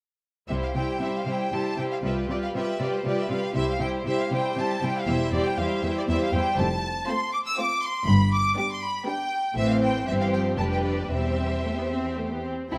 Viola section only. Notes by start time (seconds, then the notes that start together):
0.49 G3 E4
0.75 G3 E4
1.01 G3 E4
1.27 G3 E4
1.52 G3 E4
1.77 G3 E4
2.03 G3 F4
2.29 G3 F4
2.54 G3 F4
2.79 G3 F4
3.05 G3 F4
3.30 G3 F4
3.55 G3 E4
3.80 G3 E4
4.06 G3 E4
4.31 G3 E4
4.57 G3 E4
4.82 G3 E4
5.08 G3 E4
5.33 G3 E4
5.59 G3 E4
5.84 G3 E4
6.09 G3 E4
6.33 G3 E4
7.08 A3 C4
7.57 A3 C4
8.56 G3 B3
9.05 G3 B3
9.56 E3 C4
10.07 E3 C4
10.33 F3
10.58 G3 D4
11.11 G3 C4
11.64 A3
11.78 B3
11.90 C4
12.17 A3
12.31 B3
12.43 C4
12.70 C4 E4